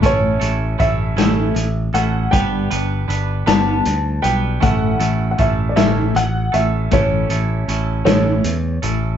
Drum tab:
HH |xxxxxx|xxxxxx|xxxxxx|xxxxxx|
SD |---o--|---o--|---o--|---o--|
BD |o-o---|o-----|o-o---|o-----|